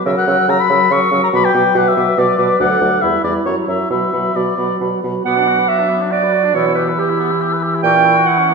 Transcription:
0.06 bassoon C#3, french horn F#3, clarinet A#4, oboe E5, flute E6
0.18 oboe F#5
0.27 bassoon C#3, french horn F#3, clarinet A#4, flute E6
0.48 bassoon C#3, french horn F#3, clarinet A#4, oboe A#5, flute E6
0.60 oboe B5
0.70 bassoon C#3, french horn F#3, clarinet A#4, flute E6
0.91 bassoon C#3, french horn F#3, clarinet A#4, oboe C#6, flute E6
1.11 bassoon C#3, french horn F#3, clarinet A#4, flute E6
1.24 oboe A#5
1.33 bassoon B2, french horn F#3, clarinet B4, oboe B5, flute D6
1.44 oboe G5
1.54 bassoon B2, french horn F#3, clarinet B4, flute D6
1.75 bassoon B2, french horn F#3, clarinet B4, oboe F#5, flute D6
1.88 oboe E5
1.96 bassoon B2, french horn F#3, clarinet B4, flute D6
2.17 bassoon B2, french horn F#3, clarinet B4, oboe D5, flute D6
2.38 bassoon B2, french horn F#3, clarinet B4, flute D6
2.59 bassoon D2, french horn F#3, clarinet A4, oboe F#5, flute D6
2.80 bassoon D2, french horn F#3, clarinet A4, flute D6
3.02 bassoon E2, french horn G3, clarinet E4, oboe E5, flute B5
3.23 bassoon E2, french horn G3, clarinet E4, oboe D5, flute B5
3.45 bassoon F#2, french horn F#3, clarinet E4, oboe C#5, flute A#5
3.67 bassoon F#2, french horn F#3, clarinet E4, oboe E5, flute A#5
3.90 bassoon B2, french horn F#3, clarinet F#4, oboe E5, flute B5
4.13 bassoon B2, french horn F#3, clarinet F#4, flute B5
4.34 bassoon B2, french horn F#3, clarinet F#4, oboe D5, flute B5
4.58 bassoon B2, french horn F#3, clarinet F#4, flute B5
4.80 bassoon B2, french horn F#3, clarinet F#4, flute B5
5.03 bassoon B2, french horn F#3, clarinet F#4, flute B5
5.24 bassoon B2, french horn F#3, oboe B3, clarinet F#5, flute D6
5.36 oboe D4
5.48 oboe F#4
5.58 oboe B4
5.68 oboe F#4, clarinet E5
5.79 oboe D4
5.89 oboe B3
6.01 oboe D4
6.11 oboe F#4, clarinet D5
6.23 oboe B4
6.33 oboe F#4
6.44 oboe D4
6.53 bassoon B2, french horn E3, oboe B3, clarinet C#5, flute E6
6.67 oboe E4
6.75 oboe G4, clarinet B4
6.89 oboe B4
6.97 clarinet G4, oboe G4
7.10 oboe E4
7.20 oboe B3
7.31 oboe E4
7.41 oboe G4
7.53 oboe B4
7.63 oboe G4
7.74 oboe E4
7.83 bassoon A#2, oboe A#3, clarinet G5, flute C#6
7.95 oboe C#4
8.05 oboe E4
8.17 oboe F#4
8.26 oboe E4, clarinet F#5
8.38 oboe C#4
8.49 oboe A#3

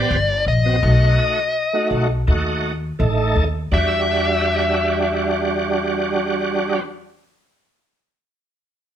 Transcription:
Already playing: tonewheel organ B3 C4 G4, lead electric guitar D5
0.11 upright bass G1
0.46 upright bass A#1, lead electric guitar D#5
0.65 tonewheel organ B3 C4 F#4
0.82 upright bass B1, tonewheel organ A3 D#4 F#4
1.73 tonewheel organ A3 D#4 F#4
1.91 upright bass B1
2.27 upright bass D#2, tonewheel organ A3 D#4 F#4
2.99 upright bass A1, tonewheel organ A3 D#4 A4
3.36 upright bass D#2
3.72 upright bass E2, tonewheel organ G3 D4 F#4, lead electric guitar E5

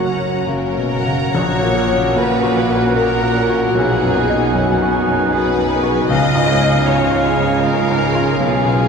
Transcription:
Already playing: double bass section F#1, cello section F#2, grand piano F#2 F#4 A#4 C#5, clarinet F#4, violin section F#5
0.06 viola section C#4 F#4, violin section F#5 A#5
0.20 grand piano C#5
0.48 double bass section F#1, cello section F#2, grand piano C#3, violin section A#4
0.77 grand piano B2
0.91 viola section C#4 F#4, violin section F#5 A#5
1.06 grand piano C#3
1.34 double bass section A#1, grand piano A#1, cello section A#2, viola section A#3 F#4, french horn section A#3 F#4, clarinet C#4, violin section C#5 A#5, flute F#5, oboe F#5
1.62 grand piano A#2
1.74 viola section C#4 A#4, violin section F#5
1.88 grand piano C#5
2.15 grand piano A#2, viola section A#3 F#4, violin section B4 A#5
2.43 grand piano F#4
2.55 viola section C#4 A#4, violin section F#5
2.69 grand piano A#2
2.96 viola section A#3 F#4, violin section A#4 A#5, grand piano A#4
3.23 grand piano A#2
3.35 viola section C#4 A#4, violin section F#5
3.49 grand piano F#4
3.67 violin section A#4
3.74 double bass section B1, grand piano B1, cello section B2, viola section B3 F#4, french horn section B3, clarinet D#4, violin section G#4 F#5, flute G#5
4.03 grand piano F#2
4.15 viola section D#4 G#4, violin section G#5
4.30 grand piano D#5
4.54 grand piano F#2, viola section B3 F#4, violin section F#5
4.82 grand piano F#4
4.93 viola section D#4 G#4, violin section G#5
5.07 grand piano F#2
5.32 viola section B3 F#4, grand piano G#4, violin section B4 F#5
5.58 grand piano F#2
5.70 viola section D#4 G#4, violin section G#5
5.83 grand piano F#4
6.09 grand piano C#2, double bass section C#2, cello section C#3, timpani C#3, viola section G#3 F4, clarinet C#4, french horn section C#4 F4, violin section D#5 F5, oboe F5
6.36 grand piano G#2
6.48 viola section C#4 G#4, violin section G#5
6.62 grand piano C#5
6.87 grand piano G#2, viola section G#3 F4, violin section C#5 F5
7.11 grand piano F4
7.25 viola section C#4 G#4, violin section G#5
7.37 grand piano G#2
7.62 viola section G#3 F4, grand piano G#4, violin section A#4 F5
7.90 grand piano G#2
8.01 viola section C#4 G#4, violin section G#5
8.15 grand piano F4
8.40 grand piano B1, double bass section B1, cello section B2, viola section B3 F4, violin section G#4 F5, flute G#5
8.65 grand piano B2
8.79 viola section C#4 G#4, violin section G#5

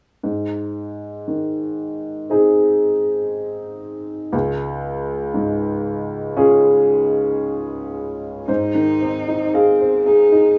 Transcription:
0.23 upright piano G#2
1.28 upright piano D#3
2.30 upright piano C4 D#4 G#4
4.32 upright piano C#2
5.34 upright piano G#2
6.37 upright piano C#4 F4 G#4
8.48 upright piano G#2 C5, cello D#4
8.75 upright piano D#3
9.01 upright piano C4
9.28 upright piano D#4
9.54 cello C4, upright piano G#4 F5
9.81 upright piano C5
10.06 cello D#4, upright piano G#4
10.32 upright piano D#4

